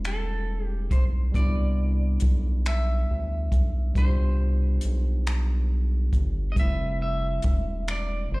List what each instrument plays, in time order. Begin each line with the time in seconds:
Already playing: analog synth bass E1, tine electric piano G3 A3 C4 E4
0.05 clean electric guitar A4, finger snap, closed hi-hat
0.65 clean electric guitar G4
0.91 analog synth bass B1, clean electric guitar C5, kick, closed hi-hat
1.32 analog synth bass C2, tine electric piano G3 B3, clean electric guitar D5, kick, closed hi-hat
1.37 tine electric piano D4 E4
2.20 analog synth bass B1, kick, closed hi-hat
2.66 clean electric guitar E5, finger snap, closed hi-hat
3.11 analog synth bass D2
3.52 analog synth bass B1, kick, closed hi-hat
3.93 analog synth bass C2, tine electric piano B2 G3, kick, closed hi-hat
3.98 tine electric piano D4 F4, clean electric guitar C5
4.07 tine electric piano G4
4.81 analog synth bass B1, closed hi-hat
5.27 finger snap, closed hi-hat
6.13 analog synth bass G1, kick, closed hi-hat
6.52 tine electric piano G3, clean electric guitar D#5
6.56 analog synth bass F1, tine electric piano A3 C4, clean electric guitar E5, kick, closed hi-hat
6.62 tine electric piano E4
7.02 clean electric guitar E5
7.42 analog synth bass E1, kick, closed hi-hat
7.88 clean electric guitar D5, finger snap, closed hi-hat
8.31 analog synth bass G1, clean electric guitar C5